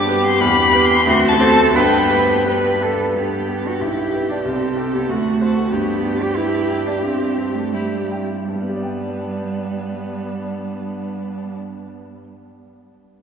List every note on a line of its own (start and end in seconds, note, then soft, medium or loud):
0.00 0.45 G2 medium
0.00 1.03 B3 medium
0.00 0.42 G4 loud
0.00 0.25 D6 loud
0.08 0.38 G4 medium
0.08 0.38 B4 medium
0.26 0.42 C6 loud
0.41 0.73 E2 medium
0.41 1.10 G4 loud
0.41 0.86 B5 loud
0.73 1.03 G4 medium
0.73 1.03 B4 medium
0.85 1.30 C6 loud
1.06 1.39 D2 medium
1.06 1.72 C4 loud
1.06 1.40 F#4 loud
1.28 1.74 A5 loud
1.40 1.72 F#4 medium
1.40 1.78 A4 loud
1.40 1.72 C5 medium
1.74 2.10 G2 medium
1.74 2.91 B3 medium
1.74 2.40 B4 medium
1.74 2.44 G5 loud
2.10 2.42 G4 medium
2.10 2.42 B4 medium
2.46 2.78 D4 medium
2.46 2.78 G4 medium
2.46 2.78 B4 medium
2.46 2.84 B4 medium
2.81 3.12 G4 soft
2.81 3.15 A4 medium
2.81 3.12 B4 medium
3.15 3.79 G2 soft
3.15 3.68 B3 medium
3.15 3.77 G4 soft
3.15 4.42 G4 medium
3.48 3.78 G4 soft
3.48 3.78 B4 soft
3.67 3.83 F#4 medium
3.81 4.44 B1 soft
3.81 4.29 E4 medium
3.81 5.11 G4 soft
4.13 4.42 G4 soft
4.13 4.43 B4 soft
4.30 4.36 D4 medium
4.45 5.07 C2 soft
4.45 4.96 C4 medium
4.45 5.11 A4 medium
4.77 5.06 G4 soft
4.77 5.06 A4 soft
4.95 5.13 B3 medium
5.09 5.70 D2 soft
5.09 5.72 A3 medium
5.09 5.41 F#4 soft
5.09 5.41 F#4 medium
5.41 5.69 F#4 soft
5.41 5.74 F#4 medium
5.41 5.70 A4 medium
5.41 5.70 C5 soft
5.71 6.98 G2 medium
5.71 6.22 B3 medium
5.71 7.68 G4 medium
5.71 7.73 G4 medium
6.04 6.55 D4 soft
6.21 6.38 G4 medium
6.36 6.88 E4 medium
6.36 6.89 B4 soft
6.69 7.02 G5 soft
6.86 7.03 D4 medium
7.03 8.45 G2 soft
7.03 7.54 C4 medium
7.38 7.96 C4 soft
7.55 7.75 A3 medium
7.73 8.47 G3 soft
7.73 8.10 E4 soft
7.73 8.25 G4 soft
7.73 8.34 E5 soft
8.12 8.49 G5 soft
8.48 11.58 G2 soft
8.48 11.57 G3 soft
8.48 11.58 B3 soft
8.48 11.58 D4 soft
8.55 11.65 G3 soft
8.62 11.72 B3 soft
8.69 11.79 G4 soft
8.76 11.86 D5 soft
8.83 11.93 G5 soft